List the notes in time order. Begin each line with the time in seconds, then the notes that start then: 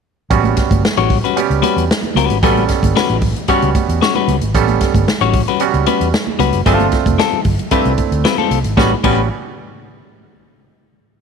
0.30 A1 G3 B3 C#4 F#4, kick, closed hi-hat, low conga
0.44 closed hi-hat, muted conga, high conga
0.57 kick, snare, closed hi-hat
0.71 G1, kick, closed hi-hat, high conga
0.83 muted fingered electric bass stroke, snare
0.97 A1 G3 C#4 F#4 C#5, closed hi-hat, muted conga
1.10 kick, open hi-hat, low conga
1.24 G3 C#4 F#4 B4, closed hi-hat
1.36 G3 B3 C#4 G4, closed hi-hat, muted conga
1.50 C#2, closed hi-hat
1.62 G3 C#4 F#4 B4, closed hi-hat, high conga
1.76 E2, closed hi-hat
1.91 snare
2.03 closed hi-hat, muted conga, high conga
2.15 C#2 G3 C#4 F#4 B4, closed hi-hat, high conga, low conga
2.30 G#1, closed hi-hat
2.43 A1 G3 B3 C#4 F#4 A4 B4, kick, closed hi-hat, muted conga, low conga
2.56 closed hi-hat, high conga
2.69 kick, snare, closed hi-hat
2.83 G1, kick, closed hi-hat, high conga
2.96 G3 C#4 F#4 B4, muted fingered electric bass stroke, snare
3.09 A1, closed hi-hat, muted conga
3.21 kick, open hi-hat, low conga
3.36 closed hi-hat
3.48 G3 B3 C#4 F#4 C#5, kick, closed hi-hat, muted conga
3.62 C#2, closed hi-hat, muted conga
3.75 kick, closed hi-hat, high conga
3.89 E2, closed hi-hat
4.02 G3 C#4 F#4 C#5, snare
4.15 G3 C#4 F#4 B4, closed hi-hat, high conga
4.28 C#2, closed hi-hat, high conga, low conga
4.41 G#1, closed hi-hat
4.54 A1 G3 B3 C#4 A4, kick, closed hi-hat, low conga
4.68 closed hi-hat, high conga
4.81 kick, snare, closed hi-hat
4.94 G1, kick, closed hi-hat, high conga
5.07 muted fingered electric bass stroke, snare
5.21 A1 G3 C#4 F#4 C#5, closed hi-hat, muted conga
5.33 kick, open hi-hat, low conga
5.48 G3 C#4 F#4 B4, closed hi-hat
5.60 G3 B3 C#4 F#4, closed hi-hat
5.74 C#2, closed hi-hat, muted conga
5.86 G3 C#4 F#4 B4, closed hi-hat, high conga
6.00 E2, closed hi-hat
6.14 snare
6.27 muted conga, high conga
6.39 C#2 G3 C#4 F#4 B4, closed hi-hat, high conga, low conga
6.53 F#1, closed hi-hat
6.66 G1 G3 A3 C4 D4 E4 F4 A4, kick, closed hi-hat, muted conga, low conga
6.73 F4
6.80 closed hi-hat, muted conga, high conga
6.92 kick, snare, closed hi-hat
7.06 F1, kick, closed hi-hat, high conga
7.19 G3 C4 F4 A4, snare
7.32 muted fingered electric bass stroke, closed hi-hat, muted conga
7.45 G1, kick, open hi-hat, low conga
7.59 closed hi-hat
7.71 G3 A3 C4 D4 E4 F4 B4, kick, closed hi-hat
7.85 C2, closed hi-hat, muted conga
7.98 kick, closed hi-hat, high conga
8.11 D2, closed hi-hat
8.25 G3 C4 F4 B4, snare, muted conga
8.38 G3 C4 F4 A4, muted conga, high conga
8.50 C2, closed hi-hat, high conga, low conga
8.64 G#1, closed hi-hat
8.77 A1 G3 B3 C#4 F#4 B4, kick, snare, high conga
9.04 A1 G3 B3 C#4 F#4 B4, kick, crash, high conga